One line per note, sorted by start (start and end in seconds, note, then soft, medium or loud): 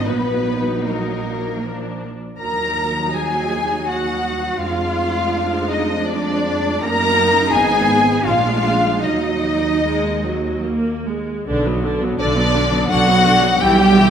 0.05 2.21 A#1 medium
0.05 1.61 F#3 medium
0.05 0.85 B3 medium
0.05 1.61 D#4 medium
0.05 0.85 B4 medium
0.84 2.03 A#3 medium
0.84 2.03 A#4 soft
0.84 2.04 A#4 medium
1.65 2.17 F3 soft
1.65 2.17 D4 soft
2.39 4.58 D#2 medium
2.39 4.57 F#3 medium
2.39 4.57 D#4 medium
2.39 3.11 A#4 medium
2.39 3.11 A#5 medium
2.39 3.12 A#5 medium
3.14 3.87 G#4 medium
3.14 3.88 G#5 medium
3.14 3.89 G#5 medium
3.88 4.60 F#4 medium
3.88 4.61 F#5 medium
3.88 4.60 F#5 medium
4.60 6.78 F2 medium
4.60 6.78 G#3 medium
4.60 6.78 D4 medium
4.60 5.69 F4 medium
4.60 5.67 F5 medium
4.60 5.70 F5 medium
5.69 6.06 D#4 medium
5.69 6.06 D#5 medium
6.05 6.82 D4 loud
6.05 6.82 D5 medium
6.05 6.83 D5 medium
6.82 7.52 F#2 medium
6.82 7.48 A#3 medium
6.82 8.21 D#4 medium
6.82 7.52 A#4 loud
6.82 7.52 A#5 loud
7.52 8.25 G#1 medium
7.52 8.21 B3 medium
7.52 8.24 G#4 loud
7.52 8.24 G#5 medium
7.52 8.25 G#5 loud
8.25 9.03 A#1 medium
8.25 8.99 G#3 medium
8.25 8.99 D4 medium
8.25 9.03 F4 medium
8.25 9.01 F5 medium
8.25 9.02 F5 medium
9.03 11.26 D#2 medium
9.03 9.72 F#3 medium
9.03 10.65 D#4 medium
9.03 9.72 D#4 medium
9.03 10.65 D#5 medium
9.03 10.66 D#5 medium
9.84 10.22 G#3 medium
10.24 10.65 F#3 medium
10.65 11.07 A#3 medium
11.07 11.47 G#3 medium
11.47 12.11 B1 medium
11.47 11.64 D3 medium
11.47 11.64 D4 medium
11.65 11.83 F#3 medium
11.65 11.83 B3 medium
11.83 12.01 D3 medium
11.83 12.01 D4 medium
12.02 12.19 F#3 medium
12.02 12.19 B3 medium
12.18 12.82 B1 medium
12.18 12.87 D3 medium
12.18 12.36 D3 medium
12.18 12.36 D4 medium
12.18 12.87 D4 medium
12.18 12.87 D5 loud
12.37 12.55 F#3 medium
12.37 12.55 B3 medium
12.54 12.73 D3 medium
12.54 12.73 D4 medium
12.72 12.91 F#3 medium
12.72 12.91 B3 medium
12.90 13.53 B1 medium
12.90 13.08 D3 medium
12.90 13.61 F#3 medium
12.90 13.08 D4 medium
12.90 13.59 F#4 loud
12.90 13.61 F#5 loud
13.09 13.27 F#3 medium
13.09 13.26 B3 medium
13.26 13.44 D3 medium
13.26 13.44 D4 medium
13.44 13.61 F#3 medium
13.44 13.61 B3 medium
13.61 14.10 B1 medium
13.61 13.77 E3 medium
13.61 14.10 G3 loud
13.61 13.77 E4 medium
13.61 14.10 G4 loud
13.61 14.10 G5 loud
13.79 13.96 G3 medium
13.79 13.96 G4 medium
13.96 14.10 E3 medium
13.96 14.10 E4 medium